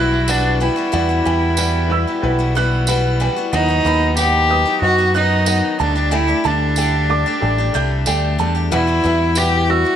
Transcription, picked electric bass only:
0.00 0.68 B1 medium
0.93 1.19 E2 loud
1.26 2.04 E2 medium
2.23 3.27 B1 medium
3.53 3.79 D#2 loud
3.85 4.63 D#2 loud
4.82 5.60 F#2 loud
5.80 6.32 D2 loud
6.45 7.23 D2 loud
7.42 7.68 A1 medium
7.75 8.04 C2 medium
8.07 8.36 D2 medium
8.39 8.69 E2 medium
8.72 8.98 E2 loud
9.04 9.83 E2 loud

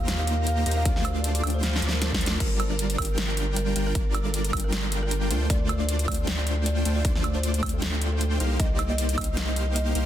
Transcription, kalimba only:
0.19 0.35 F5 medium
0.47 0.64 F5 medium
0.77 0.99 F5 loud
1.16 1.37 D5 medium
1.54 1.76 C5 loud
1.93 2.03 A#4 medium
2.40 2.57 A#4 loud
2.70 2.87 A#4 loud
2.98 3.15 A#4 loud
3.29 3.45 A#4 medium
3.56 3.73 A#4 medium
3.87 4.08 A#4 medium
4.25 4.47 A4 medium
4.64 4.86 A#4 medium
5.03 5.13 A#4 medium
5.50 5.67 D5 loud
5.80 5.96 D5 medium
6.08 6.25 D5 loud
6.38 6.54 D5 medium
6.66 6.83 D5 loud
6.96 7.18 D5 medium
7.35 7.56 C5 medium
7.74 7.95 A4 medium
8.12 8.22 A4 medium
8.60 8.76 D#5 loud
8.90 9.06 D#5 medium
9.18 9.34 D#5 loud
9.48 9.64 D#5 medium
9.76 9.93 D#5 loud

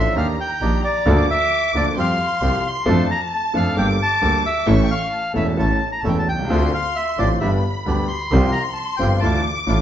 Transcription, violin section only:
0.00 0.11 C6 medium
0.15 1.06 A#5 medium
1.06 1.97 D6 loud
1.97 2.83 C6 medium
2.87 3.77 A5 medium
3.75 4.62 D6 medium
4.65 5.11 C#6 medium
5.11 6.22 A5 medium
6.48 7.36 C6 medium
7.42 8.33 B5 medium
8.32 9.23 C6 medium
9.23 9.81 D6 medium

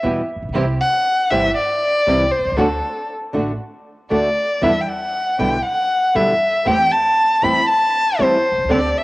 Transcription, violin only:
0.81 1.32 F#5 loud
1.31 1.56 E5 medium
1.56 2.33 D5 medium
2.31 2.58 C5 medium
2.57 3.08 A4 medium
4.11 4.64 D5 medium
4.63 4.82 E5 medium
4.81 4.90 G5 medium
4.89 5.41 F#5 medium
5.39 5.65 G5 medium
5.65 6.18 F#5 loud
6.16 6.69 E5 medium
6.67 6.93 G5 loud
6.92 7.45 A5 medium
7.44 7.68 B5 loud
7.69 8.22 A5 loud
8.21 8.73 C5 loud
8.71 8.99 D5 medium
8.97 9.04 E5 medium

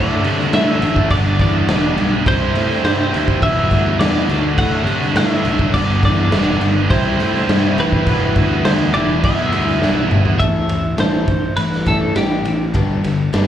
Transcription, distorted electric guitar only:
0.00 0.10 F#3 medium
0.09 0.39 F#3 medium
0.09 0.38 A3 medium
0.09 0.37 D4 medium
0.38 0.52 F#3 medium
0.38 0.52 A3 medium
0.38 0.53 D4 medium
0.52 0.80 D3 loud
0.52 0.68 F#3 loud
0.52 0.67 A3 loud
0.52 0.66 D4 loud
0.67 0.81 F#3 medium
0.67 0.82 A3 medium
0.67 0.82 D4 medium
0.81 1.08 D3 medium
0.81 0.97 F#3 medium
0.81 0.96 A3 medium
0.81 0.95 D4 medium
0.96 1.10 F#3 medium
0.96 1.09 A3 medium
0.96 1.09 D4 medium
1.10 1.66 G2 medium
1.10 1.38 D3 medium
1.10 1.39 G3 medium
1.10 1.39 B3 loud
1.10 1.40 D4 medium
1.39 1.67 D3 medium
1.39 1.68 G3 medium
1.39 1.68 B3 medium
1.39 1.69 D4 medium
1.68 2.11 G2 medium
1.68 1.96 D3 medium
1.68 1.83 G3 medium
1.68 1.82 B3 medium
1.68 1.81 D4 loud
1.82 1.97 G3 medium
1.82 1.97 B3 medium
1.82 1.97 D4 medium
1.97 muted distorted electric guitar stroke soft
2.11 2.25 G3 medium
2.11 2.24 B3 medium
2.11 2.24 D4 medium
2.26 2.69 C3 loud
2.26 2.42 G3 loud
2.26 2.41 C4 loud
2.26 2.40 E4 loud
2.41 2.71 G3 medium
2.41 2.70 C4 medium
2.41 2.68 E4 medium
2.70 2.84 G3 medium
2.70 2.85 C4 medium
2.70 2.85 E4 medium
2.84 3.12 C3 medium
2.84 2.99 G3 loud
2.84 2.98 C4 loud
2.84 2.97 E4 loud
2.98 3.13 G3 medium
2.98 3.13 C4 medium
2.98 3.14 E4 medium
3.13 3.40 C3 medium
3.13 3.29 G3 medium
3.13 3.28 C4 medium
3.13 3.27 E4 medium
3.28 3.42 G3 medium
3.28 3.41 C4 medium
3.28 3.40 E4 medium
3.42 3.70 E3 medium
3.42 3.71 G3 medium
3.42 3.71 B3 loud
3.42 3.72 E4 medium
3.71 3.99 E3 medium
3.71 3.99 G3 medium
3.71 4.00 B3 medium
3.71 4.01 E4 medium
4.00 4.27 E3 loud
4.00 4.15 G3 medium
4.00 4.14 B3 loud
4.00 4.13 E4 medium
4.14 4.28 G3 medium
4.14 4.28 B3 medium
4.14 4.27 E4 medium
4.29 4.72 D3 loud
4.29 4.46 F#3 loud
4.29 4.44 A3 loud
4.29 4.43 D4 loud
4.44 4.74 F#3 medium
4.44 4.73 A3 medium
4.44 4.72 D4 medium
4.73 5.03 F#3 medium
4.73 5.02 A3 medium
4.73 5.01 D4 medium
5.02 5.16 F#3 medium
5.02 5.17 A3 medium
5.02 5.18 D4 medium
5.16 5.45 D3 medium
5.16 5.31 F#3 loud
5.16 5.31 A3 loud
5.16 5.29 D4 loud
5.31 5.45 F#3 medium
5.31 5.46 A3 medium
5.31 5.47 D4 medium
5.46 5.73 D3 medium
5.46 5.61 F#3 medium
5.46 5.60 A3 medium
5.46 5.59 D4 medium
5.60 5.74 F#3 medium
5.60 5.73 A3 medium
5.60 5.73 D4 medium
5.74 6.32 G2 medium
5.74 6.02 D3 medium
5.74 6.04 G3 loud
5.74 6.04 B3 medium
5.74 6.05 D4 loud
6.03 6.32 D3 medium
6.03 6.34 G3 medium
6.03 6.34 B3 medium
6.03 6.34 D4 medium
6.33 6.76 G2 medium
6.33 6.61 D3 medium
6.33 6.49 G3 loud
6.33 6.47 B3 loud
6.33 6.46 D4 loud
6.47 6.62 G3 medium
6.47 6.62 B3 medium
6.47 6.62 D4 medium
6.62 muted distorted electric guitar stroke medium
6.76 6.90 G3 medium
6.76 6.89 B3 medium
6.76 6.88 D4 medium
6.90 7.34 C3 loud
6.90 7.07 G3 medium
6.90 7.05 C4 loud
6.90 7.04 E4 loud
7.05 7.36 G3 medium
7.05 7.35 C4 medium
7.05 7.34 E4 medium
7.35 7.48 G3 medium
7.35 7.49 C4 medium
7.35 7.50 E4 medium
7.49 7.77 C3 loud
7.49 7.64 G3 medium
7.49 7.63 C4 loud
7.49 7.63 E4 loud
7.63 7.78 G3 medium
7.63 7.78 C4 medium
7.63 7.80 E4 medium
7.78 8.05 C3 medium
7.78 7.94 G3 medium
7.78 7.93 C4 medium
7.78 7.92 E4 medium
7.92 8.06 G3 medium
7.92 8.06 C4 medium
7.92 8.09 E4 medium
8.07 8.35 E3 medium
8.07 8.36 G3 medium
8.07 8.36 B3 loud
8.07 8.37 E4 loud
8.36 8.64 E3 medium
8.36 8.65 G3 medium
8.36 8.65 B3 medium
8.36 8.66 E4 medium
8.65 8.93 E3 medium
8.65 8.80 G3 medium
8.65 8.79 B3 medium
8.65 8.78 E4 loud
8.79 8.94 G3 medium
8.79 8.93 B3 medium
8.79 8.93 E4 medium
8.94 9.38 E3 loud
8.94 9.09 G3 medium
8.94 9.09 B3 loud
8.94 9.07 E4 loud
9.09 9.39 G3 medium
9.09 9.37 B3 medium
9.09 9.36 E4 medium
9.37 9.68 G3 medium
9.37 9.67 B3 medium
9.37 9.66 E4 medium
9.68 9.81 G3 medium
9.68 9.82 B3 medium
9.68 9.82 E4 medium
9.81 10.09 E3 medium
9.81 9.97 G3 loud
9.81 9.96 B3 medium
9.81 9.94 E4 loud
9.95 10.10 G3 medium
9.95 10.11 B3 medium
9.95 10.11 E4 medium
10.10 10.38 E3 medium
10.10 10.26 G3 medium
10.10 10.25 B3 medium
10.10 10.23 E4 medium
10.24 10.40 G3 medium
10.24 10.39 B3 medium
10.24 10.38 E4 medium

